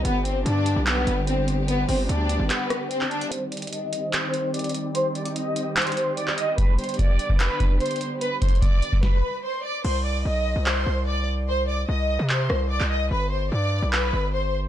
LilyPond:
<<
  \new Staff \with { instrumentName = "Violin section" } { \time 4/4 \key c \minor \tempo 4 = 147 <b b'>8 <c' c''>8 <d' d''>4 <b b'>4 <c' c''>8 r8 | <b b'>8 <c' c''>8 <d' d''>4 <b b'>4 <c' c''>8 <d' d''>8 | <c'' c'''>8 <d'' d'''>8 <ees'' ees'''>4 <c'' c'''>4 <d'' d'''>8 r8 | <c'' c'''>8 <d'' d'''>8 <ees'' ees'''>4 <c'' c'''>4 <d'' d'''>8 <ees'' ees'''>8 |
<b' b''>8 <c'' c'''>8 <d'' d'''>4 <b' b''>4 <c'' c'''>8 r8 | <b' b''>8 <c'' c'''>8 <d'' d'''>4 <b' b''>4 <c'' c'''>8 <d'' d'''>8 | <c'' c'''>8 <d'' d'''>8 <ees'' ees'''>4 <c'' c'''>4 <d'' d'''>8 r8 | <c'' c'''>8 <d'' d'''>8 <ees'' ees'''>4 <c'' c'''>4 <d'' d'''>8 <ees'' ees'''>8 |
<b' b''>8 <c'' c'''>8 <d'' d'''>4 <b' b''>4 <c'' c'''>8 r8 | }
  \new Staff \with { instrumentName = "String section" } { \time 4/4 \key c \minor << { <g g'>1~ | <g g'>1 | <g g'>1~ | <g g'>1~ |
<g g'>1~ | <g g'>2 r2 | r1 | r1 |
r1 | } \\ { <d b>1~ | <d b>1 | <ees c'>1~ | <ees c'>1 |
<d b>1~ | <d b>2 r2 | r1 | r1 |
r1 | } >> }
  \new Staff \with { instrumentName = "808-style bass" } { \clef bass \time 4/4 \key c \minor g,,4 g,8. b,,8. g,,4.~ | g,,8 g,,8 d,8. g,,16 r2 | r1 | r1 |
r1 | r1 | c,4 b,,8. c,8. c,4.~ | c,4 c,8. c8. c,8. c,8. |
g,,4 g,8. b,,8. g,,4. | }
  \new DrumStaff \with { instrumentName = "Drums" } \drummode { \time 4/4 hh8 hh8 hh8 hh8 <hc hh>8 hh8 hh8 hh8 | hh8 hho8 hh8 hh8 <hc hh>8 <hh ss>8 hh16 hc16 hh16 hh16 | hh8 hh32 hh32 hh32 hh32 hh8 hh8 <hc hh>8 hh8 hh32 hh32 hh32 hh32 hh8 | hh8 hh16 hh16 hh8 hh8 <hc hh>32 hh32 hh32 hh32 hh8 hh16 hc16 hh8 |
<hh bd>8 hh32 hh32 hh32 hh32 <hh bd>8 hh16 bd16 <hc hh>8 <hh bd>8 hh32 hh32 hh32 hh32 hh8 | \tuplet 3/2 { hh16 r16 r16 <hh bd>16 hh16 hh16 } <hh bd>8 hh16 bd16 <bd sn>4 r4 | cymc4 r4 hc4 r4 | r4 r4 hc8 ss8 r16 hc8. |
r4 r4 hc4 r4 | }
>>